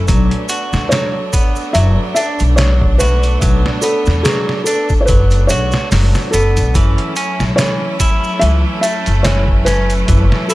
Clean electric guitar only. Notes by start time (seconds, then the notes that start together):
0.08 F#3
0.49 F#4
0.92 F#3
1.33 B3
1.75 F#3
2.17 D4
2.59 F#3
3.00 F#4
3.41 F#3
3.83 B3
4.25 F#3
4.67 D4
5.09 F#3
5.50 F#4
5.92 F#3
6.34 B3
6.75 E3
7.16 C#4
7.58 E3
8.00 E4
8.42 E3
8.83 A3
9.25 E3
9.66 C#4
10.08 E3
10.50 E4